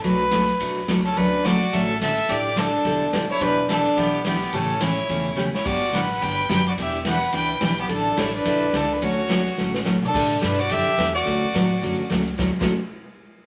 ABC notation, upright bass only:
X:1
M:4/4
L:1/16
Q:"Swing" 1/4=214
K:D
V:1 name="Upright bass" clef=bass
B,,,8 B,,,4 C,,4 | D,,8 A,,,8 | A,,,8 E,,,8 | E,,,8 B,,,8 |
A,,,8 E,,,8 | G,,,4 A,,,4 G,,,4 F,,,4 | E,,,8 C,,4 B,,,4 | A,,,4 A,,,4 B,,,4 C,,4 |
D,,8 A,,,8 | A,,4 G,,4 F,,2 z2 E,,4 | D,,2 z2 A,,4 F,,2 z2 C,,4 | D,, z2 D,,2 z8 z3 |]